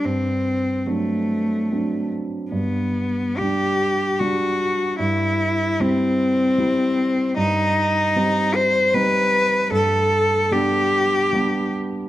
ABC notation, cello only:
X:1
M:3/4
L:1/8
Q:1/4=75
K:G
V:1 name="Cello"
C2 A,3 z | B,2 G2 F2 | E2 C4 | _E3 c B2 |
A2 G3 z |]